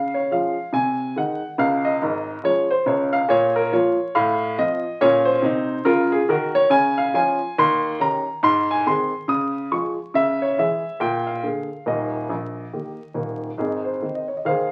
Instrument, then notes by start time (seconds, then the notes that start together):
upright piano
Already playing: C#3 F5
0.14 C#5
0.31 F3 G#3 C#4 F5
0.73 C3 G#5
1.16 D#3 G#3 D#4 F#5
1.58 C#2 C#3 F5
1.85 D#5
2.02 G#1 G#2
2.43 F3 G#3 C#4 C#5
2.71 C5
2.86 C#2 C#3 C#5
3.13 F5
3.29 A#2 C#5
3.56 A#4
3.72 F3 A#3 F4 C#5
4.15 A2 F5
4.58 F3 C4 F4 D#5
5.01 A#2 C#4 C#5
5.25 C5
5.42 C3 D#4
5.85 C#3 F4 A#4
6.12 G#4
6.29 D#3 F#4 A#4
6.55 C#5
6.70 C#3 G#5
6.98 F5
7.14 F3 C#4 F4 G#5
7.58 D#2 C6
8.00 D#3 C#4 G4 A#5
8.43 G#2 C6
8.71 G#5
8.87 D#3 C4 G#4 C6
9.28 C#3 D#6
9.71 F3 G#3 G#4 C#6
10.14 C#3 E5
10.42 C#5
10.58 E3 G#3 G#4 E5
11.00 A#2 G5
11.27 F5
11.43 D3 A#3 G#4
11.86 D#1 D#2 D#5
12.30 A#1
12.73 D#3 A#3 G4
13.14 D#1 D#2
13.58 G#1 G#2 C4 D#4 G#4
13.84 C5
14.02 D#3 C4 D#4
14.15 D#5
14.28 C#5
14.37 D#5
14.45 D#2 D#3 G#4 C5 F5